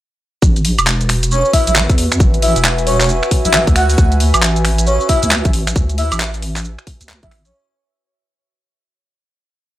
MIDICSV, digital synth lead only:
0, 0, Header, 1, 2, 480
1, 0, Start_track
1, 0, Tempo, 444444
1, 458, Time_signature, 4, 2, 24, 8
1, 10569, End_track
2, 0, Start_track
2, 0, Title_t, "Digital synth lead"
2, 0, Program_c, 0, 84
2, 1419, Note_on_c, 0, 73, 88
2, 1585, Note_off_c, 0, 73, 0
2, 1656, Note_on_c, 0, 76, 94
2, 1753, Note_off_c, 0, 76, 0
2, 1807, Note_on_c, 0, 76, 77
2, 1866, Note_off_c, 0, 76, 0
2, 2617, Note_on_c, 0, 76, 96
2, 2784, Note_off_c, 0, 76, 0
2, 3095, Note_on_c, 0, 73, 91
2, 3192, Note_off_c, 0, 73, 0
2, 3245, Note_on_c, 0, 73, 79
2, 3304, Note_off_c, 0, 73, 0
2, 3725, Note_on_c, 0, 76, 90
2, 3845, Note_off_c, 0, 76, 0
2, 4059, Note_on_c, 0, 78, 87
2, 4154, Note_off_c, 0, 78, 0
2, 4206, Note_on_c, 0, 78, 83
2, 4265, Note_off_c, 0, 78, 0
2, 5259, Note_on_c, 0, 73, 93
2, 5425, Note_off_c, 0, 73, 0
2, 5497, Note_on_c, 0, 76, 89
2, 5593, Note_off_c, 0, 76, 0
2, 5648, Note_on_c, 0, 76, 72
2, 5706, Note_off_c, 0, 76, 0
2, 6458, Note_on_c, 0, 76, 95
2, 6624, Note_off_c, 0, 76, 0
2, 7807, Note_on_c, 0, 76, 89
2, 7926, Note_off_c, 0, 76, 0
2, 8049, Note_on_c, 0, 73, 100
2, 8139, Note_off_c, 0, 73, 0
2, 10569, End_track
0, 0, End_of_file